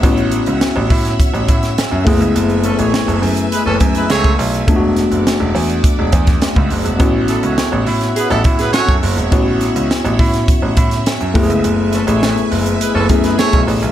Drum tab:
HH |xxxxx-oxxxxxx-ox|xxxxxxoxx-xxxxox|x-xxx-oxx-xxx-ox|x-xxx-oxxxxxxxox|
SD |----o--o---oo---|----o-------o---|--o-o------oo---|--o-o--o---oo---|
BD |o-----o-o-o---o-|----------o--o--|o-------o-oo-o--|o---------o--o--|

HH |x-xxxxoxx-xxxxox|x-xxxxoxx-xxxxox|
SD |--o-o--o---oo---|--o-o------oo---|
BD |o-----o-o-o---o-|----------o--o--|